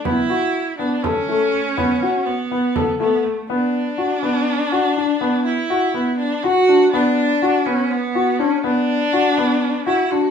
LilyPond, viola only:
\new Staff \with { instrumentName = "Viola" } { \time 7/8 \key b \minor \tempo 4 = 122 e'4. d'8 cis'4.~ | cis'4 b4. b8 a8 | d'2.~ d'8~ | d'8 e'4. d'8 fis'4 |
d'4. cis'8 b4 cis'8 | d'2~ d'8 e'8 fis'8 | }